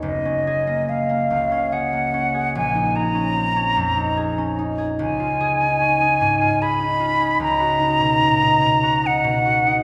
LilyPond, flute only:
\new Staff \with { instrumentName = "Flute" } { \time 3/4 \key fis \major \tempo 4 = 73 dis''4 eis''4 fis''4 | gis''8 ais''2 r8 | gis''2 b''4 | ais''2 fis''4 | }